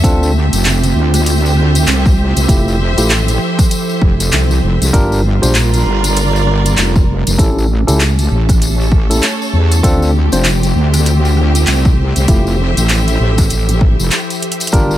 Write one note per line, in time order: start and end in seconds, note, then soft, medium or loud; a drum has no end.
0.00 0.50 D2 loud
0.00 2.45 A3 medium
0.00 0.31 C4 loud
0.00 2.46 C4 medium
0.00 0.31 D4 medium
0.00 0.31 F4 medium
0.00 5.93 G4 medium
0.00 0.82 A4 medium
0.00 0.31 A4 loud
0.00 1.03 E5 medium
0.00 kick loud
0.04 2.47 D3 medium
0.04 2.47 F4 loud
0.04 closed hi-hat medium
0.04 tambourine medium
0.23 tambourine soft
0.34 5.93 C5 medium
0.53 0.94 F1 loud
0.53 closed hi-hat medium
0.53 tambourine medium
0.65 clap loud
0.65 closed hi-hat medium
0.65 tambourine medium
0.83 closed hi-hat soft
0.83 tambourine soft
0.95 1.85 D2 loud
1.14 5.93 E5 medium
1.14 cross-stick soft
1.14 closed hi-hat medium
1.14 tambourine medium
1.26 closed hi-hat medium
1.26 tambourine medium
1.46 tambourine soft
1.57 cross-stick soft
1.60 cross-stick soft
1.63 cross-stick soft
1.66 cross-stick soft
1.73 cross-stick soft
1.73 closed hi-hat medium
1.73 tambourine medium
1.87 2.33 C2 loud
1.87 clap loud
1.87 closed hi-hat medium
1.87 tambourine medium
2.06 kick loud
2.06 tambourine soft
2.36 2.47 C2 loud
2.36 closed hi-hat medium
2.36 tambourine medium
2.48 2.95 F1 loud
2.48 4.91 F3 medium
2.48 2.75 A3 medium
2.48 2.75 E4 medium
2.48 4.91 E4 medium
2.48 2.76 F4 medium
2.48 2.75 G4 medium
2.48 4.91 G4 medium
2.48 4.91 A4 medium
2.48 kick loud
2.48 closed hi-hat medium
2.48 tambourine medium
2.68 tambourine soft
2.97 3.38 A1 medium
2.97 3.11 A3 medium
2.97 3.11 E4 medium
2.97 3.11 F4 medium
2.97 3.11 G4 medium
2.97 closed hi-hat medium
2.97 tambourine medium
3.10 clap loud
3.10 closed hi-hat medium
3.10 tambourine medium
3.28 closed hi-hat soft
3.28 tambourine soft
3.59 kick loud
3.59 cross-stick soft
3.59 closed hi-hat soft
3.59 tambourine medium
3.71 closed hi-hat medium
3.71 tambourine medium
3.89 tambourine soft
4.02 4.30 F1 medium
4.02 kick loud
4.20 closed hi-hat medium
4.20 tambourine medium
4.32 4.61 C2 loud
4.32 clap loud
4.32 closed hi-hat medium
4.32 tambourine medium
4.51 tambourine soft
4.63 4.78 F1 loud
4.81 4.92 C2 medium
4.81 closed hi-hat medium
4.81 tambourine medium
4.93 5.40 G1 medium
4.93 7.36 G3 medium
4.93 7.36 D4 medium
4.93 5.20 D4 loud
4.93 7.36 F4 medium
4.93 5.20 F4 medium
4.93 7.39 F4 medium
4.93 5.20 G4 medium
4.93 7.36 A#4 medium
4.93 5.20 A#4 loud
4.93 kick loud
4.93 closed hi-hat medium
4.93 tambourine medium
5.12 tambourine soft
5.40 5.84 A#1 loud
5.40 5.56 D4 medium
5.40 5.56 F4 medium
5.40 5.56 G4 medium
5.40 7.39 A#4 medium
5.40 5.56 C5 medium
5.40 closed hi-hat soft
5.40 tambourine medium
5.55 7.39 D5 medium
5.55 clap loud
5.55 closed hi-hat medium
5.55 tambourine medium
5.74 closed hi-hat soft
5.74 tambourine soft
5.85 6.75 G1 loud
6.04 cross-stick soft
6.04 closed hi-hat soft
6.04 tambourine medium
6.16 closed hi-hat medium
6.16 tambourine medium
6.36 tambourine soft
6.47 cross-stick soft
6.66 closed hi-hat medium
6.66 tambourine medium
6.77 7.23 F1 medium
6.77 clap loud
6.77 closed hi-hat medium
6.77 tambourine medium
6.96 kick loud
6.96 tambourine soft
7.27 7.37 F1 loud
7.27 closed hi-hat medium
7.27 tambourine medium
7.38 7.85 A1 loud
7.38 12.24 A3 medium
7.38 7.65 C#4 medium
7.38 9.81 C#4 medium
7.38 7.65 E4 medium
7.38 7.65 G4 medium
7.38 9.81 G4 loud
7.38 7.65 A4 medium
7.38 kick loud
7.38 closed hi-hat medium
7.38 tambourine medium
7.58 tambourine soft
7.87 8.29 C#2 loud
7.87 8.01 C#4 medium
7.87 8.01 E4 medium
7.87 8.01 G4 medium
7.87 8.01 A4 medium
7.87 closed hi-hat medium
7.87 tambourine medium
7.99 10.83 A4 medium
7.99 clap loud
7.99 closed hi-hat medium
7.99 tambourine medium
8.19 closed hi-hat soft
8.19 tambourine soft
8.31 9.21 A1 loud
8.49 9.84 C#5 medium
8.49 kick loud
8.49 cross-stick medium
8.49 closed hi-hat soft
8.49 tambourine medium
8.62 closed hi-hat medium
8.62 tambourine medium
8.81 tambourine soft
8.92 kick loud
9.10 9.23 C#4 medium
9.10 9.23 E4 medium
9.10 9.23 G4 medium
9.10 9.23 A4 medium
9.10 closed hi-hat medium
9.10 tambourine medium
9.23 clap loud
9.23 closed hi-hat medium
9.23 tambourine medium
9.42 tambourine soft
9.53 9.82 E2 loud
9.72 closed hi-hat medium
9.72 tambourine medium
9.83 10.29 D2 loud
9.83 12.26 D3 medium
9.83 12.26 C4 medium
9.83 10.10 C4 loud
9.83 10.10 D4 loud
9.83 12.26 F4 loud
9.83 10.10 F4 loud
9.83 14.98 G4 medium
9.83 10.10 A4 loud
9.83 kick loud
9.83 closed hi-hat medium
9.83 tambourine medium
10.02 tambourine soft
10.32 10.73 F1 loud
10.32 10.46 C4 medium
10.32 10.46 D4 medium
10.32 10.46 F4 medium
10.32 10.46 C5 medium
10.32 closed hi-hat medium
10.32 tambourine medium
10.45 clap loud
10.45 closed hi-hat medium
10.45 tambourine medium
10.54 14.98 C5 medium
10.63 closed hi-hat soft
10.63 tambourine soft
10.71 11.65 D2 loud
10.71 14.98 E5 medium
10.94 cross-stick medium
10.94 closed hi-hat soft
10.94 tambourine medium
11.06 closed hi-hat medium
11.06 tambourine medium
11.25 tambourine soft
11.37 cross-stick soft
11.55 closed hi-hat medium
11.55 tambourine medium
11.67 12.13 C2 loud
11.67 clap loud
11.67 closed hi-hat medium
11.67 tambourine medium
11.85 kick loud
11.85 tambourine soft
12.16 12.26 C2 loud
12.16 closed hi-hat medium
12.16 tambourine medium
12.28 12.74 F1 loud
12.28 14.71 F3 medium
12.28 12.55 A3 medium
12.28 12.55 E4 medium
12.28 14.71 E4 medium
12.28 12.55 F4 medium
12.28 12.55 G4 medium
12.28 14.71 G4 medium
12.28 14.71 A4 loud
12.28 kick loud
12.28 closed hi-hat medium
12.28 tambourine medium
12.47 tambourine soft
12.77 13.18 A1 loud
12.77 closed hi-hat medium
12.77 tambourine medium
12.89 clap loud
12.89 closed hi-hat medium
12.89 tambourine medium
13.08 closed hi-hat soft
13.08 tambourine soft
13.20 13.49 A1 loud
13.38 kick loud
13.38 cross-stick medium
13.38 closed hi-hat soft
13.38 tambourine medium
13.50 13.97 A1 medium
13.50 closed hi-hat medium
13.50 tambourine medium
13.69 closed hi-hat soft
13.69 tambourine soft
13.81 kick loud
13.99 14.10 F1 loud
13.99 tambourine medium
14.11 clap loud
14.11 closed hi-hat medium
14.11 tambourine medium
14.30 closed hi-hat soft
14.30 tambourine soft
14.42 closed hi-hat medium
14.52 closed hi-hat medium
14.60 closed hi-hat medium
14.60 tambourine medium
14.67 closed hi-hat medium
14.72 14.98 G1 medium
14.72 14.98 G3 medium
14.72 14.98 D4 loud
14.72 14.98 D4 medium
14.72 14.98 F4 medium
14.72 14.98 G4 medium
14.72 14.98 A#4 loud
14.72 kick loud
14.72 closed hi-hat medium
14.72 tambourine medium
14.91 tambourine soft